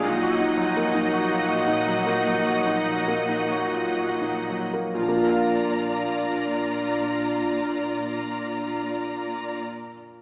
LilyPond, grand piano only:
\new Staff \with { instrumentName = "Grand piano" } { \time 12/8 \key bes \major \tempo 4. = 46 bes,16 ges'16 ees'16 ges16 bes16 ees'16 ges'16 f'16 ges'16 ees'16 ges16 bes16 ges16 ges'16 ees'16 ges16 bes16 ees'16 ges'16 f'16 ges'16 ees'16 ges16 bes16 | <bes, f bes f' bes' f''>1. | }